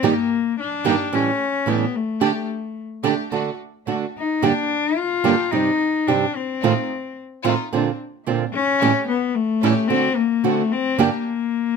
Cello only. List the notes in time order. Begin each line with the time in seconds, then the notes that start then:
0.06 A#3
0.60 D4
1.14 C#4
1.69 B3
1.96 A3
4.18 D#4
4.44 D4
4.97 F4
5.51 D#4
6.07 D4
6.36 C4
8.53 C#4
9.08 B3
9.35 A3
9.88 C4
10.16 A#3
10.45 A3
10.72 C4
10.98 A#3